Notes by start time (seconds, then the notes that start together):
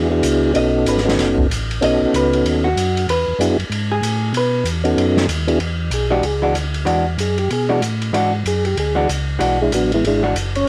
Already playing: E2
0.10 B3 D4 E4 F#4 G#4
0.23 C#2, hi-hat pedal, ride
0.53 B1 B3 C#4 D#4 F#4 A4 D#5, ride
0.86 G#1 B4, hi-hat pedal, ride
0.98 snare
1.05 B3 C#4 D#4 F#4 A4, snare
1.18 F#1, snare, ride
1.38 kick
1.50 A1, hi-hat pedal, ride
1.71 ride
1.81 B1 B3 C#4 D#4 F#4 A4 D#5, ride
2.00 B1
2.13 C#2 B4, hi-hat pedal, ride
2.33 ride
2.44 D#2, ride
2.64 F#4
2.76 F#2, hi-hat pedal, ride
2.97 ride
3.08 E2 B4, ride
3.27 E2
3.39 F#2 B3 D4 E4 F#4 G#4, hi-hat pedal, ride
3.58 F#2, ride
3.70 G#2, ride
3.92 G#4
4.02 A2, hi-hat pedal, ride
4.33 B2, ride
4.37 B4
4.64 E2, hi-hat pedal, ride
4.84 B3 C#4 D#4 F#4 A4, ride
4.97 F#2, ride
5.17 snare
5.28 D#2, hi-hat pedal, ride
5.47 B3 D4 E4 F#4 G#4, ride
5.59 E2, ride
5.90 B1 G#4, hi-hat pedal, ride
6.11 E3 G#3 D4 F#4 G4
6.23 C#2 G#4, ride
6.42 E3 G#3 D4 F#4
6.54 D2, hi-hat pedal, ride
6.74 ride
6.85 E2 E3 G#3 D4 F#4, ride
7.18 F#2 G#4, hi-hat pedal, ride
7.38 G4, ride
7.50 B2 G#4, ride
7.69 E3 G#3 D4 F#4
7.81 A2, hi-hat pedal, ride
8.02 ride
8.13 G#2 E3 G#3 D4 F#4, ride
8.45 F#2 G#4, hi-hat pedal, ride
8.65 G4, ride
8.77 D2 G#4, ride
8.95 E3 G#3 D4 F#4
9.09 C#2, hi-hat pedal, ride
9.39 B1 E3 G#3 D4 F#4, ride
9.61 G#3 D4 E4 G#4
9.71 A1 F#3 B3 D4 F#4, hi-hat pedal, ride
9.92 E3 G#3 B3 E4, ride
10.03 G#1 G#3 D4 E4 G#4, ride
10.23 E3 G#3 D4 F#4
10.34 F#1, hi-hat pedal, ride
10.55 C#4 C#5, ride